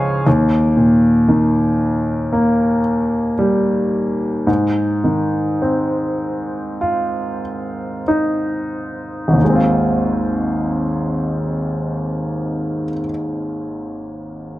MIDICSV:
0, 0, Header, 1, 2, 480
1, 0, Start_track
1, 0, Key_signature, -4, "major"
1, 0, Tempo, 1038062
1, 122, Time_signature, 4, 2, 24, 8
1, 1564, Tempo, 1117318
1, 2524, Tempo, 1192843
1, 3004, Tempo, 1257862
1, 3484, Tempo, 1342282
1, 3964, Tempo, 1388889
1, 5756, End_track
2, 0, Start_track
2, 0, Title_t, "Grand piano"
2, 0, Program_c, 0, 0
2, 0, Control_c, 0, 64, 127
2, 0, Note_on_c, 0, 37, 54
2, 0, Note_on_c, 0, 53, 49
2, 0, Note_on_c, 0, 56, 50
2, 0, Note_on_c, 0, 73, 56
2, 0, Note_on_c, 0, 77, 55
2, 0, Note_on_c, 0, 80, 53
2, 106, Note_off_c, 0, 37, 0
2, 106, Note_off_c, 0, 56, 0
2, 108, Note_off_c, 0, 80, 0
2, 111, Note_off_c, 0, 53, 0
2, 123, Note_on_c, 0, 39, 54
2, 128, Control_c, 0, 64, 0
2, 129, Note_off_c, 0, 73, 0
2, 132, Note_off_c, 0, 77, 0
2, 215, Control_c, 0, 64, 127
2, 355, Note_on_c, 0, 46, 39
2, 594, Note_on_c, 0, 51, 42
2, 1075, Note_on_c, 0, 58, 44
2, 1298, Note_off_c, 0, 46, 0
2, 1546, Note_off_c, 0, 51, 0
2, 1566, Note_on_c, 0, 55, 44
2, 2019, Note_off_c, 0, 39, 0
2, 2019, Note_off_c, 0, 58, 0
2, 2022, Note_off_c, 0, 55, 0
2, 2031, Note_on_c, 0, 44, 50
2, 2042, Control_c, 0, 64, 0
2, 2109, Control_c, 0, 64, 127
2, 2277, Note_on_c, 0, 51, 38
2, 2525, Note_on_c, 0, 60, 40
2, 3004, Note_on_c, 0, 65, 45
2, 3226, Note_off_c, 0, 51, 0
2, 3470, Note_off_c, 0, 60, 0
2, 3488, Note_on_c, 0, 63, 40
2, 3918, Note_on_c, 0, 32, 39
2, 3937, Note_on_c, 0, 39, 36
2, 3949, Note_off_c, 0, 44, 0
2, 3950, Note_off_c, 0, 65, 0
2, 3952, Note_off_c, 0, 63, 0
2, 3957, Note_on_c, 0, 51, 36
2, 3969, Control_c, 0, 64, 0
2, 3977, Note_on_c, 0, 56, 34
2, 3995, Note_on_c, 0, 60, 36
2, 4014, Note_on_c, 0, 65, 44
2, 4023, Control_c, 0, 64, 127
2, 5143, Note_off_c, 0, 32, 0
2, 5162, Note_off_c, 0, 39, 0
2, 5181, Note_off_c, 0, 51, 0
2, 5201, Note_off_c, 0, 56, 0
2, 5219, Note_off_c, 0, 60, 0
2, 5238, Note_off_c, 0, 65, 0
2, 5756, End_track
0, 0, End_of_file